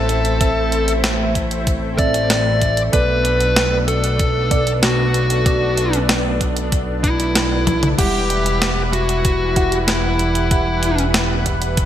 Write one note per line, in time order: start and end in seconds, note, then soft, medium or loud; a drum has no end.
0.00 2.90 A1 medium
0.00 7.95 A3 medium
0.00 0.37 C4 medium
0.00 2.89 C4 medium
0.00 2.89 E4 medium
0.00 0.37 A4 medium
0.00 0.91 A4 medium
0.00 0.37 E5 medium
0.09 closed hi-hat medium
0.25 closed hi-hat medium
0.41 1.95 C4 medium
0.41 1.95 A4 medium
0.41 1.95 E5 medium
0.41 kick loud
0.41 closed hi-hat medium
0.72 closed hi-hat medium
0.88 closed hi-hat medium
1.04 snare loud
1.04 closed hi-hat medium
1.35 kick medium
1.35 closed hi-hat medium
1.51 closed hi-hat medium
1.67 kick loud
1.67 closed hi-hat medium
1.98 2.89 C4 medium
1.98 2.89 A4 medium
1.98 2.81 D5 medium
1.98 2.89 E5 medium
1.98 kick medium
1.98 closed hi-hat medium
2.14 closed hi-hat medium
2.30 snare loud
2.30 closed hi-hat medium
2.62 kick medium
2.62 closed hi-hat medium
2.77 closed hi-hat medium
2.93 7.95 B1 medium
2.93 4.47 B3 medium
2.93 7.95 B3 medium
2.93 7.95 D4 medium
2.93 4.47 A4 medium
2.93 3.75 B4 loud
2.93 4.47 D5 medium
2.93 kick loud
2.93 closed hi-hat medium
3.25 closed hi-hat medium
3.41 closed hi-hat medium
3.56 snare loud
3.56 closed hi-hat medium
3.88 4.70 A4 medium
3.88 closed hi-hat medium
4.04 closed hi-hat medium
4.19 kick loud
4.19 closed hi-hat medium
4.51 5.42 B3 medium
4.51 5.42 A4 medium
4.51 5.42 D5 loud
4.51 kick loud
4.51 closed hi-hat medium
4.67 closed hi-hat medium
4.83 5.96 F#4 medium
4.83 snare loud
4.83 closed hi-hat medium
5.14 closed hi-hat medium
5.30 closed hi-hat medium
5.46 7.00 B3 medium
5.46 7.00 A4 medium
5.46 7.00 D5 medium
5.46 kick loud
5.46 closed hi-hat medium
5.77 closed hi-hat medium
5.93 closed hi-hat medium
6.09 snare loud
6.09 closed hi-hat medium
6.41 kick medium
6.41 closed hi-hat medium
6.57 closed hi-hat medium
6.72 kick loud
6.72 closed hi-hat medium
7.04 7.86 E4 medium
7.04 kick loud
7.04 closed hi-hat medium
7.20 closed hi-hat medium
7.35 snare loud
7.35 closed hi-hat medium
7.67 kick medium
7.67 closed hi-hat medium
7.67 high tom medium
7.83 closed hi-hat medium
7.83 mid tom medium
7.98 11.85 E1 medium
7.98 11.85 E3 medium
7.98 11.85 G3 medium
7.98 9.53 G3 medium
7.98 11.85 E4 medium
7.98 9.53 E4 medium
7.98 8.81 G4 medium
7.98 11.85 B4 medium
7.98 9.53 F#5 medium
7.98 11.85 F#5 medium
7.98 kick loud
7.98 closed hi-hat medium
7.98 crash medium
8.30 closed hi-hat medium
8.46 closed hi-hat medium
8.62 snare loud
8.62 closed hi-hat medium
8.93 9.75 F#4 medium
8.93 closed hi-hat medium
9.09 closed hi-hat medium
9.25 kick loud
9.25 closed hi-hat loud
9.56 10.47 E4 medium
9.56 10.47 G4 medium
9.56 10.47 F#5 loud
9.56 kick loud
9.56 closed hi-hat medium
9.72 closed hi-hat medium
9.88 11.02 E4 medium
9.88 snare loud
9.88 closed hi-hat medium
10.19 closed hi-hat medium
10.35 closed hi-hat medium
10.51 11.85 E4 medium
10.51 11.85 G4 medium
10.51 11.85 F#5 medium
10.51 kick loud
10.51 closed hi-hat medium
10.83 closed hi-hat medium
10.98 closed hi-hat medium
11.14 snare loud
11.14 closed hi-hat loud
11.46 kick medium
11.46 closed hi-hat medium
11.62 closed hi-hat medium
11.77 kick loud
11.77 closed hi-hat loud